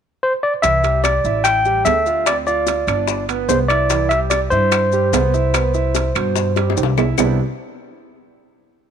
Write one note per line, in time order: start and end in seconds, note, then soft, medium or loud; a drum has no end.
0.23 0.32 C5 medium
0.43 0.52 D5 medium
0.62 1.21 C2 medium
0.62 0.80 E3 medium
0.62 0.80 E4 medium
0.62 1.01 E5 medium
0.62 high bongo medium
0.62 high timbale medium
0.62 maracas medium
0.84 1.17 G3 medium
0.84 1.18 G4 medium
0.84 high bongo soft
0.84 high timbale medium
0.84 maracas soft
1.04 1.42 D5 medium
1.04 high bongo medium
1.04 high timbale medium
1.04 low timbale medium
1.04 claves medium
1.04 maracas medium
1.24 1.82 A1 medium
1.24 1.58 E4 medium
1.24 1.59 E5 medium
1.24 maracas soft
1.44 1.83 G5 loud
1.44 high bongo medium
1.44 high timbale medium
1.44 claves medium
1.44 maracas medium
1.65 1.83 G3 medium
1.65 1.83 G4 medium
1.65 high bongo soft
1.65 maracas soft
1.85 2.82 D2 medium
1.85 2.03 A3 medium
1.85 2.03 A4 medium
1.85 2.28 E5 medium
1.85 high bongo soft
1.85 low bongo medium
1.85 high timbale medium
1.85 low timbale medium
1.85 maracas medium
2.06 2.23 F4 medium
2.06 2.23 F5 medium
2.06 high bongo soft
2.06 maracas soft
2.26 2.44 C4 medium
2.26 2.44 C5 medium
2.26 2.36 D5 medium
2.26 high bongo medium
2.26 high timbale medium
2.26 claves medium
2.26 maracas medium
2.46 2.81 F4 medium
2.46 3.25 D5 medium
2.46 2.81 F5 medium
2.46 high bongo soft
2.46 maracas soft
2.67 high bongo medium
2.67 high timbale medium
2.67 low timbale medium
2.67 maracas medium
2.87 3.45 G1 medium
2.87 3.22 D4 medium
2.87 3.22 D5 medium
2.87 high timbale medium
2.87 claves medium
2.87 maracas soft
3.08 high bongo medium
3.08 maracas medium
3.29 3.63 B3 medium
3.29 3.63 B4 medium
3.29 high bongo soft
3.29 high timbale medium
3.29 maracas soft
3.49 4.45 C2 medium
3.49 3.58 C5 medium
3.49 high bongo soft
3.49 low bongo medium
3.49 low timbale medium
3.49 maracas medium
3.68 3.87 E4 medium
3.68 4.07 D5 medium
3.68 3.87 E5 medium
3.68 high bongo soft
3.68 high timbale medium
3.68 claves medium
3.68 maracas soft
3.90 4.07 E3 medium
3.90 4.08 E4 medium
3.90 high bongo medium
3.90 high timbale medium
3.90 maracas medium
4.09 4.45 G3 medium
4.09 4.45 G4 medium
4.09 4.19 E5 medium
4.09 high bongo soft
4.09 high timbale medium
4.09 maracas soft
4.30 4.40 D5 medium
4.30 high bongo medium
4.30 high timbale loud
4.30 low timbale medium
4.30 claves medium
4.30 maracas medium
4.50 5.09 G2 medium
4.50 4.86 E4 medium
4.50 6.73 C5 medium
4.50 4.86 E5 medium
4.50 maracas soft
4.72 high bongo medium
4.72 high timbale medium
4.72 claves medium
4.72 maracas medium
4.92 5.10 G3 medium
4.92 5.10 G4 medium
4.92 high bongo soft
4.92 maracas soft
5.13 6.10 C2 medium
5.13 5.30 B3 medium
5.13 5.30 B4 medium
5.13 high bongo soft
5.13 low bongo medium
5.13 high timbale medium
5.13 low timbale medium
5.13 maracas medium
5.34 5.51 E4 medium
5.34 5.51 E5 medium
5.34 high bongo soft
5.34 maracas soft
5.54 5.71 B3 medium
5.54 5.71 B4 medium
5.54 high bongo medium
5.54 high timbale medium
5.54 claves medium
5.54 maracas medium
5.74 6.08 E4 medium
5.74 6.08 E5 medium
5.74 high bongo soft
5.74 maracas soft
5.95 high bongo medium
5.95 high timbale medium
5.95 low timbale medium
5.95 maracas medium
6.15 6.73 G2 medium
6.15 6.49 B2 medium
6.15 6.50 C5 medium
6.15 high timbale medium
6.15 claves medium
6.15 maracas soft
6.36 high bongo medium
6.36 maracas medium
6.56 6.91 G3 medium
6.56 6.91 G4 medium
6.56 high bongo medium
6.56 high timbale medium
6.56 maracas soft
6.70 high bongo medium
6.77 7.13 C2 medium
6.77 high timbale medium
6.77 maracas medium
6.83 low bongo loud
6.97 7.15 E4 medium
6.97 7.15 E5 medium
6.97 low bongo medium
6.97 low timbale medium
6.97 claves medium
6.97 maracas soft
7.18 7.37 C2 medium
7.18 7.37 C3 medium
7.18 7.37 G3 medium
7.18 7.38 B3 medium
7.18 7.38 C4 medium
7.18 7.38 D4 medium
7.18 7.38 E4 medium
7.18 low bongo loud
7.18 low timbale medium
7.18 claves medium
7.18 maracas loud